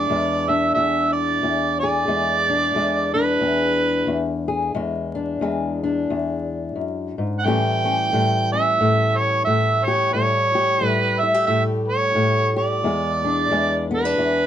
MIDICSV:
0, 0, Header, 1, 3, 480
1, 0, Start_track
1, 0, Tempo, 667408
1, 1506, Time_signature, 4, 2, 24, 8
1, 5351, Tempo, 674916
1, 10348, End_track
2, 0, Start_track
2, 0, Title_t, "Harmonica"
2, 0, Program_c, 0, 22
2, 0, Note_on_c, 0, 74, 105
2, 352, Note_on_c, 0, 76, 85
2, 363, Note_off_c, 0, 74, 0
2, 531, Note_off_c, 0, 76, 0
2, 535, Note_on_c, 0, 76, 91
2, 806, Note_off_c, 0, 76, 0
2, 811, Note_on_c, 0, 74, 97
2, 1273, Note_off_c, 0, 74, 0
2, 1294, Note_on_c, 0, 74, 104
2, 2234, Note_off_c, 0, 74, 0
2, 2257, Note_on_c, 0, 71, 86
2, 3196, Note_off_c, 0, 71, 0
2, 5316, Note_on_c, 0, 78, 79
2, 5360, Note_on_c, 0, 79, 116
2, 5371, Note_off_c, 0, 78, 0
2, 6117, Note_off_c, 0, 79, 0
2, 6122, Note_on_c, 0, 76, 97
2, 6582, Note_on_c, 0, 73, 90
2, 6592, Note_off_c, 0, 76, 0
2, 6772, Note_off_c, 0, 73, 0
2, 6777, Note_on_c, 0, 76, 86
2, 7064, Note_on_c, 0, 73, 89
2, 7075, Note_off_c, 0, 76, 0
2, 7260, Note_off_c, 0, 73, 0
2, 7264, Note_on_c, 0, 73, 103
2, 7783, Note_off_c, 0, 73, 0
2, 7783, Note_on_c, 0, 71, 103
2, 8018, Note_on_c, 0, 76, 91
2, 8029, Note_off_c, 0, 71, 0
2, 8211, Note_off_c, 0, 76, 0
2, 8215, Note_on_c, 0, 76, 95
2, 8329, Note_off_c, 0, 76, 0
2, 8509, Note_on_c, 0, 73, 90
2, 8966, Note_off_c, 0, 73, 0
2, 9003, Note_on_c, 0, 74, 106
2, 9935, Note_off_c, 0, 74, 0
2, 9975, Note_on_c, 0, 71, 87
2, 10348, Note_off_c, 0, 71, 0
2, 10348, End_track
3, 0, Start_track
3, 0, Title_t, "Steel-string acoustic guitar"
3, 0, Program_c, 1, 25
3, 0, Note_on_c, 1, 62, 58
3, 69, Note_on_c, 1, 40, 72
3, 75, Note_on_c, 1, 56, 54
3, 350, Note_off_c, 1, 62, 0
3, 353, Note_on_c, 1, 62, 56
3, 544, Note_off_c, 1, 40, 0
3, 547, Note_on_c, 1, 40, 73
3, 1026, Note_off_c, 1, 40, 0
3, 1029, Note_on_c, 1, 40, 67
3, 1317, Note_on_c, 1, 68, 64
3, 1491, Note_off_c, 1, 40, 0
3, 1494, Note_off_c, 1, 56, 0
3, 1494, Note_on_c, 1, 40, 67
3, 1497, Note_on_c, 1, 56, 59
3, 1516, Note_off_c, 1, 62, 0
3, 1794, Note_on_c, 1, 62, 59
3, 1816, Note_off_c, 1, 68, 0
3, 1973, Note_off_c, 1, 40, 0
3, 1976, Note_on_c, 1, 40, 65
3, 1983, Note_off_c, 1, 56, 0
3, 1985, Note_on_c, 1, 56, 54
3, 2261, Note_off_c, 1, 62, 0
3, 2264, Note_on_c, 1, 62, 55
3, 2450, Note_off_c, 1, 40, 0
3, 2453, Note_on_c, 1, 40, 75
3, 2918, Note_off_c, 1, 40, 0
3, 2927, Note_on_c, 1, 40, 69
3, 3222, Note_on_c, 1, 68, 64
3, 3396, Note_off_c, 1, 68, 0
3, 3397, Note_off_c, 1, 62, 0
3, 3402, Note_off_c, 1, 56, 0
3, 3407, Note_off_c, 1, 40, 0
3, 3414, Note_on_c, 1, 56, 56
3, 3415, Note_on_c, 1, 40, 67
3, 3704, Note_on_c, 1, 62, 57
3, 3883, Note_off_c, 1, 40, 0
3, 3892, Note_off_c, 1, 56, 0
3, 3892, Note_on_c, 1, 40, 70
3, 3901, Note_on_c, 1, 56, 53
3, 4188, Note_off_c, 1, 62, 0
3, 4196, Note_on_c, 1, 62, 54
3, 4381, Note_off_c, 1, 40, 0
3, 4389, Note_on_c, 1, 40, 77
3, 4856, Note_off_c, 1, 40, 0
3, 4859, Note_on_c, 1, 42, 51
3, 5155, Note_off_c, 1, 42, 0
3, 5164, Note_on_c, 1, 44, 61
3, 5327, Note_off_c, 1, 56, 0
3, 5330, Note_off_c, 1, 62, 0
3, 5355, Note_off_c, 1, 44, 0
3, 5361, Note_on_c, 1, 45, 76
3, 5366, Note_on_c, 1, 52, 58
3, 5372, Note_on_c, 1, 55, 61
3, 5375, Note_on_c, 1, 61, 58
3, 5379, Note_on_c, 1, 67, 61
3, 5638, Note_off_c, 1, 61, 0
3, 5641, Note_on_c, 1, 61, 57
3, 5838, Note_off_c, 1, 45, 0
3, 5841, Note_on_c, 1, 45, 71
3, 5847, Note_off_c, 1, 55, 0
3, 5850, Note_on_c, 1, 55, 54
3, 6127, Note_off_c, 1, 61, 0
3, 6130, Note_on_c, 1, 61, 61
3, 6320, Note_off_c, 1, 45, 0
3, 6323, Note_on_c, 1, 45, 75
3, 6785, Note_off_c, 1, 45, 0
3, 6793, Note_on_c, 1, 45, 67
3, 7075, Note_off_c, 1, 67, 0
3, 7084, Note_on_c, 1, 67, 64
3, 7249, Note_off_c, 1, 67, 0
3, 7251, Note_off_c, 1, 61, 0
3, 7261, Note_off_c, 1, 45, 0
3, 7267, Note_off_c, 1, 55, 0
3, 7270, Note_on_c, 1, 45, 62
3, 7275, Note_on_c, 1, 55, 54
3, 7563, Note_on_c, 1, 67, 60
3, 7738, Note_off_c, 1, 45, 0
3, 7740, Note_off_c, 1, 55, 0
3, 7746, Note_on_c, 1, 45, 62
3, 7750, Note_on_c, 1, 55, 55
3, 7857, Note_off_c, 1, 52, 0
3, 8041, Note_off_c, 1, 67, 0
3, 8047, Note_on_c, 1, 64, 61
3, 8127, Note_off_c, 1, 64, 0
3, 8127, Note_on_c, 1, 67, 56
3, 8215, Note_off_c, 1, 45, 0
3, 8223, Note_on_c, 1, 45, 77
3, 8694, Note_off_c, 1, 45, 0
3, 8703, Note_on_c, 1, 45, 61
3, 8986, Note_off_c, 1, 67, 0
3, 8995, Note_on_c, 1, 67, 69
3, 9166, Note_off_c, 1, 67, 0
3, 9187, Note_off_c, 1, 45, 0
3, 9191, Note_off_c, 1, 55, 0
3, 9191, Note_on_c, 1, 40, 78
3, 9205, Note_on_c, 1, 56, 55
3, 9480, Note_on_c, 1, 62, 56
3, 9667, Note_off_c, 1, 40, 0
3, 9670, Note_off_c, 1, 56, 0
3, 9670, Note_on_c, 1, 40, 73
3, 9673, Note_on_c, 1, 56, 58
3, 9948, Note_off_c, 1, 62, 0
3, 9951, Note_on_c, 1, 59, 61
3, 10053, Note_off_c, 1, 59, 0
3, 10053, Note_on_c, 1, 62, 51
3, 10140, Note_off_c, 1, 40, 0
3, 10143, Note_on_c, 1, 40, 76
3, 10348, Note_off_c, 1, 40, 0
3, 10348, Note_off_c, 1, 56, 0
3, 10348, Note_off_c, 1, 62, 0
3, 10348, End_track
0, 0, End_of_file